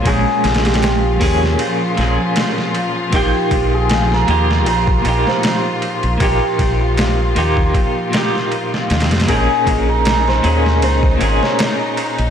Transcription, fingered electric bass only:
X:1
M:4/4
L:1/16
Q:"Swing 16ths" 1/4=78
K:Bbdor
V:1 name="Fingered electric bass" clef=bass
B,,, z B,,,4 E,,2 z2 B,,, z4 z | B,,, z B,,,4 E,,2 B,,,2 B,,, z4 B,,, | B,,, z B,,,4 E,,2 z6 E,, F,, | B,,, z B,,,4 E,,2 D,,2 A,,, z4 B,,, |]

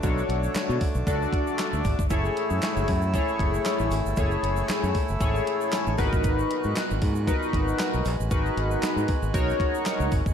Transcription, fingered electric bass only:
X:1
M:4/4
L:1/16
Q:"Swing 16ths" 1/4=116
K:G#phr
V:1 name="Fingered electric bass" clef=bass
B,,,2 B,,,2 z B,, z B,,, C,,2 z3 =D,, G,,, =G,,, | F,,,2 z F,, z F,,, F,,3 z F,,,2 z A,,, G,,, =G,,, | F,,,2 F,,,2 z F,, z F,,, G,,,2 z3 A,,, G,,, A,,, | G,,,2 z G,, z G,,, G,,3 z G,,,2 z B,,, ^A,,, =A,,, |
G,,,2 G,,,2 z G,, z G,,, B,,,2 z3 C,, G,,, =G,,, |]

